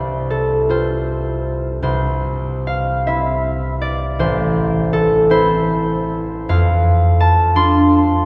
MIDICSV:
0, 0, Header, 1, 2, 480
1, 0, Start_track
1, 0, Key_signature, 0, "major"
1, 0, Tempo, 742574
1, 683, Tempo, 779221
1, 1163, Time_signature, 6, 3, 24, 8
1, 1163, Tempo, 842697
1, 1643, Tempo, 763359
1, 2123, Tempo, 744417
1, 3563, Tempo, 797872
1, 4043, Tempo, 725514
1, 5221, End_track
2, 0, Start_track
2, 0, Title_t, "Harp"
2, 0, Program_c, 0, 46
2, 0, Note_on_c, 0, 36, 42
2, 0, Note_on_c, 0, 60, 36
2, 0, Note_on_c, 0, 72, 60
2, 197, Note_on_c, 0, 69, 58
2, 445, Note_off_c, 0, 72, 0
2, 446, Note_off_c, 0, 60, 0
2, 448, Note_on_c, 0, 65, 35
2, 454, Note_on_c, 0, 60, 36
2, 455, Note_on_c, 0, 72, 62
2, 1149, Note_off_c, 0, 36, 0
2, 1153, Note_off_c, 0, 72, 0
2, 1156, Note_on_c, 0, 36, 46
2, 1160, Note_on_c, 0, 72, 63
2, 1181, Note_off_c, 0, 69, 0
2, 1187, Note_off_c, 0, 65, 0
2, 1638, Note_on_c, 0, 77, 65
2, 1883, Note_off_c, 0, 60, 0
2, 1888, Note_on_c, 0, 76, 55
2, 1889, Note_on_c, 0, 60, 39
2, 1893, Note_on_c, 0, 64, 39
2, 2050, Note_off_c, 0, 77, 0
2, 2364, Note_on_c, 0, 74, 65
2, 2603, Note_off_c, 0, 72, 0
2, 2606, Note_on_c, 0, 33, 49
2, 2610, Note_on_c, 0, 72, 72
2, 2625, Note_off_c, 0, 36, 0
2, 2776, Note_off_c, 0, 74, 0
2, 3082, Note_on_c, 0, 69, 73
2, 3313, Note_off_c, 0, 60, 0
2, 3314, Note_off_c, 0, 64, 0
2, 3319, Note_off_c, 0, 72, 0
2, 3319, Note_on_c, 0, 60, 39
2, 3323, Note_on_c, 0, 64, 45
2, 3327, Note_on_c, 0, 72, 76
2, 4054, Note_on_c, 0, 41, 55
2, 4056, Note_on_c, 0, 77, 77
2, 4062, Note_off_c, 0, 33, 0
2, 4063, Note_off_c, 0, 76, 0
2, 4066, Note_off_c, 0, 60, 0
2, 4067, Note_off_c, 0, 64, 0
2, 4069, Note_off_c, 0, 72, 0
2, 4527, Note_on_c, 0, 81, 91
2, 4758, Note_on_c, 0, 62, 48
2, 4762, Note_on_c, 0, 84, 95
2, 4765, Note_on_c, 0, 65, 46
2, 5221, Note_off_c, 0, 41, 0
2, 5221, Note_off_c, 0, 62, 0
2, 5221, Note_off_c, 0, 65, 0
2, 5221, Note_off_c, 0, 69, 0
2, 5221, Note_off_c, 0, 77, 0
2, 5221, Note_off_c, 0, 81, 0
2, 5221, Note_off_c, 0, 84, 0
2, 5221, End_track
0, 0, End_of_file